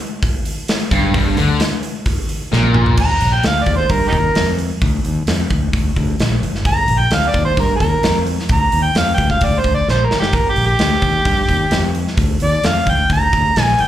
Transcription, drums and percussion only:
0.23 kick loud
0.23 open hi-hat medium
0.45 open hi-hat medium
0.68 snare loud
0.68 open hi-hat medium
0.91 kick loud
0.91 open hi-hat medium
1.14 kick loud
1.14 open hi-hat medium
1.37 open hi-hat medium
1.60 snare loud
1.60 open hi-hat medium
1.83 open hi-hat medium
2.06 kick loud
2.06 open hi-hat medium
2.29 open hi-hat medium
2.53 snare medium
2.63 high tom medium
2.74 mid tom medium
2.86 floor tom medium
2.97 kick loud
2.97 crash loud
3.21 open hi-hat medium
3.43 snare loud
3.43 open hi-hat medium
3.66 kick medium
3.66 open hi-hat medium
3.89 kick loud
3.89 open hi-hat medium
4.13 kick medium
4.13 open hi-hat medium
4.35 snare loud
4.35 open hi-hat medium
4.59 open hi-hat medium
4.82 kick loud
4.82 open hi-hat medium
5.05 open hi-hat medium
5.27 snare loud
5.27 open hi-hat medium
5.50 kick medium
5.50 open hi-hat medium
5.73 kick loud
5.73 open hi-hat medium
5.96 kick medium
5.96 open hi-hat medium
6.20 snare loud
6.20 open hi-hat medium
6.43 open hi-hat medium
6.55 snare soft
6.65 kick loud
6.65 open hi-hat medium
6.88 open hi-hat medium
7.11 snare loud
7.11 open hi-hat medium
7.34 kick medium
7.34 open hi-hat medium
7.57 kick loud
7.57 open hi-hat medium
7.80 kick medium
7.80 open hi-hat medium
8.03 snare loud
8.03 open hi-hat medium
8.27 open hi-hat medium
8.39 snare soft
8.49 kick loud
8.49 open hi-hat medium
8.72 open hi-hat medium
8.95 snare loud
8.95 open hi-hat medium
9.18 kick medium
9.18 open hi-hat medium
9.30 kick medium
9.41 kick medium
9.41 open hi-hat medium
9.64 kick medium
9.64 open hi-hat medium
9.88 snare medium
10.11 snare medium
10.22 snare medium
10.33 kick loud
10.33 open hi-hat medium
10.56 open hi-hat medium
10.79 snare loud
10.79 open hi-hat medium
11.02 kick medium
11.02 open hi-hat medium
11.25 kick loud
11.25 open hi-hat medium
11.49 kick medium
11.49 open hi-hat medium
11.71 snare loud
11.71 open hi-hat medium
11.95 open hi-hat medium
12.08 snare soft
12.18 kick loud
12.18 open hi-hat medium
12.40 open hi-hat medium
12.64 snare loud
12.64 open hi-hat medium
12.87 kick medium
12.87 open hi-hat medium
13.10 kick loud
13.10 open hi-hat medium
13.33 kick medium
13.33 open hi-hat medium
13.56 snare loud
13.56 open hi-hat medium
13.68 snare soft
13.79 open hi-hat medium

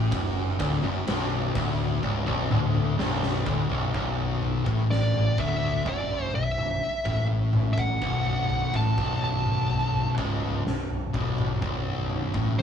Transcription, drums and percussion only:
0.12 kick loud
0.12 ride loud
0.60 kick loud
0.60 ride medium
1.07 snare loud
1.07 ride medium
1.55 kick loud
1.55 ride medium
2.03 kick medium
2.27 kick medium
2.51 mid tom medium
2.75 mid tom medium
2.99 snare medium
3.23 snare medium
3.46 kick loud
3.69 floor tom medium
3.94 kick loud
3.94 floor tom medium
4.42 floor tom medium
4.66 kick loud
4.66 floor tom medium
4.92 snare medium
5.14 floor tom medium
5.14 mid tom medium
5.38 kick loud
5.38 floor tom loud
5.86 kick medium
5.86 floor tom medium
6.10 floor tom medium
6.58 floor tom medium
7.05 kick medium
7.05 floor tom medium
7.53 floor tom medium
7.53 mid tom medium
7.78 kick loud
7.78 floor tom medium
8.02 kick loud
8.26 floor tom medium
8.50 floor tom medium
8.74 kick loud
8.98 kick medium
8.98 floor tom medium
8.98 mid tom medium
9.22 floor tom medium
9.46 mid tom medium
9.70 floor tom medium
9.94 floor tom medium
10.18 kick loud
10.42 floor tom medium
10.67 snare medium
10.90 floor tom medium
11.14 kick loud
11.14 mid tom medium
11.38 floor tom medium
11.38 mid tom medium
11.62 kick medium
11.62 floor tom medium
12.10 floor tom medium
12.34 kick loud
12.34 floor tom medium

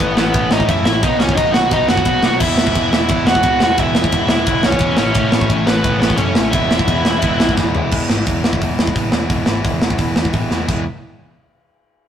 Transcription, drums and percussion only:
0.00 kick loud
0.00 ride medium
0.17 snare loud
0.34 kick loud
0.34 ride medium
0.51 snare loud
0.60 kick medium
0.69 kick loud
0.69 ride medium
0.85 snare loud
1.03 kick loud
1.03 ride medium
1.20 snare loud
1.29 kick medium
1.38 kick loud
1.38 ride medium
1.54 snare loud
1.71 kick loud
1.71 ride medium
1.89 snare loud
1.97 kick medium
2.05 kick loud
2.05 ride medium
2.23 snare loud
2.40 kick loud
2.40 crash loud
2.58 snare loud
2.67 kick medium
2.75 kick loud
2.75 ride medium
2.93 snare loud
3.08 kick loud
3.08 ride medium
3.27 snare loud
3.35 kick medium
3.43 kick loud
3.43 ride medium
3.60 snare loud
3.78 kick loud
3.78 ride medium
3.95 snare loud
4.04 kick medium
4.12 kick loud
4.12 ride medium
4.29 snare loud
4.46 kick loud
4.46 ride medium
4.63 snare loud
4.72 kick medium
4.79 kick loud
4.79 ride medium
4.97 snare loud
5.14 kick loud
5.14 ride medium
5.32 snare loud
5.41 kick medium
5.50 kick loud
5.50 ride medium
5.67 snare loud
5.84 kick loud
5.84 ride medium
6.02 snare loud
6.10 kick medium
6.17 kick loud
6.17 ride medium
6.35 snare loud
6.53 kick loud
6.53 ride medium
6.71 snare loud
6.79 kick medium
6.88 kick loud
6.88 ride medium
7.05 snare loud
7.22 kick loud
7.22 ride medium
7.40 snare loud
7.49 kick medium
7.57 kick loud
7.57 snare medium
7.75 floor tom loud
7.91 kick loud
7.91 crash loud
8.10 snare loud
8.26 kick loud
8.26 open hi-hat medium
8.44 snare loud
8.53 kick medium
8.62 kick loud
8.62 open hi-hat medium
8.79 snare loud
8.87 kick medium
8.96 kick loud
8.96 open hi-hat medium
9.12 snare loud
9.30 kick loud
9.30 open hi-hat medium
9.46 snare loud
9.65 kick loud
9.65 open hi-hat medium
9.82 snare loud
9.90 kick medium
9.98 kick loud
9.98 open hi-hat medium
10.16 snare loud
10.25 kick medium
10.33 kick medium
10.33 open hi-hat medium
10.51 snare medium
10.68 kick loud
10.68 crash medium

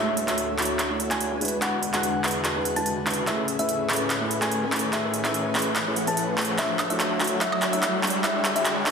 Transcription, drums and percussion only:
0.17 closed hi-hat medium
0.28 clap soft
0.28 closed hi-hat medium
0.38 closed hi-hat medium
0.58 clap soft
0.58 closed hi-hat soft
0.62 closed hi-hat medium
0.65 closed hi-hat medium
0.79 clap soft
0.79 closed hi-hat medium
1.00 closed hi-hat medium
1.11 clap soft
1.11 closed hi-hat medium
1.21 closed hi-hat medium
1.41 closed hi-hat soft
1.45 closed hi-hat medium
1.48 closed hi-hat medium
1.62 clap medium
1.62 closed hi-hat medium
1.83 closed hi-hat medium
1.94 clap soft
1.94 closed hi-hat medium
2.03 closed hi-hat medium
2.24 clap medium
2.24 closed hi-hat soft
2.28 closed hi-hat medium
2.31 closed hi-hat medium
2.45 clap medium
2.45 closed hi-hat medium
2.65 closed hi-hat medium
2.76 closed hi-hat medium
2.86 closed hi-hat medium
3.07 clap medium
3.07 closed hi-hat soft
3.10 closed hi-hat medium
3.14 closed hi-hat medium
3.27 clap medium
3.27 closed hi-hat medium
3.48 closed hi-hat medium
3.59 closed hi-hat medium
3.69 closed hi-hat medium
3.89 clap medium
3.89 closed hi-hat soft
3.93 closed hi-hat medium
3.96 closed hi-hat medium
4.10 clap medium
4.10 closed hi-hat medium
4.31 closed hi-hat medium
4.42 clap medium
4.42 closed hi-hat medium
4.52 closed hi-hat medium
4.72 clap medium
4.72 closed hi-hat soft
4.76 closed hi-hat medium
4.79 closed hi-hat medium
4.93 clap medium
4.93 closed hi-hat medium
5.14 closed hi-hat medium
5.25 clap medium
5.25 closed hi-hat medium
5.34 closed hi-hat medium
5.55 clap medium
5.55 closed hi-hat soft
5.59 closed hi-hat medium
5.62 closed hi-hat medium
5.76 clap medium
5.76 closed hi-hat medium
5.96 closed hi-hat medium
6.07 closed hi-hat medium
6.17 closed hi-hat medium
6.38 clap medium
6.38 closed hi-hat soft
6.41 closed hi-hat medium
6.45 closed hi-hat medium
6.58 clap medium
6.58 closed hi-hat medium
6.79 clap medium
6.79 closed hi-hat medium
6.79 high woodblock medium
6.90 closed hi-hat medium
7.00 clap medium
7.00 closed hi-hat medium
7.20 clap medium
7.20 closed hi-hat soft
7.24 closed hi-hat medium
7.27 closed hi-hat medium
7.41 clap medium
7.41 closed hi-hat medium
7.52 high woodblock medium
7.62 clap medium
7.62 closed hi-hat medium
7.73 closed hi-hat medium
7.83 clap medium
7.83 closed hi-hat medium
8.03 clap medium
8.03 closed hi-hat soft
8.07 closed hi-hat medium
8.10 closed hi-hat medium
8.24 clap medium
8.24 closed hi-hat medium
8.45 clap medium
8.45 closed hi-hat medium
8.56 closed hi-hat medium
8.65 clap medium
8.65 closed hi-hat medium
8.86 clap medium
8.86 closed hi-hat soft

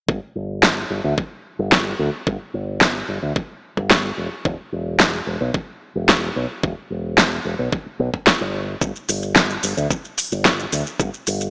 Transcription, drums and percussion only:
0.09 kick loud
0.63 kick loud
0.63 snare loud
1.18 kick loud
1.72 kick loud
1.72 snare loud
2.27 kick loud
2.81 kick loud
2.81 snare loud
3.36 kick loud
3.77 kick medium
3.91 kick loud
3.91 snare loud
4.45 kick loud
5.00 kick loud
5.00 snare loud
5.54 kick loud
6.09 kick loud
6.09 snare loud
6.63 kick loud
7.18 kick loud
7.18 snare loud
7.73 kick loud
8.14 kick medium
8.27 kick loud
8.27 snare loud
8.81 kick loud
8.81 shaker soft
8.96 shaker soft
9.09 open hi-hat loud
9.09 shaker medium
9.23 shaker soft
9.36 kick loud
9.36 snare loud
9.36 shaker soft
9.50 shaker soft
9.63 open hi-hat medium
9.63 shaker medium
9.78 shaker soft
9.91 kick loud
9.91 shaker soft
10.05 shaker soft
10.18 open hi-hat loud
10.18 shaker medium
10.32 shaker soft
10.45 kick loud
10.45 snare loud
10.45 shaker soft
10.60 shaker soft
10.72 open hi-hat medium
10.72 shaker medium
10.87 shaker soft
11.00 kick loud
11.00 shaker soft
11.14 shaker soft
11.27 open hi-hat loud
11.27 shaker medium
11.41 shaker soft

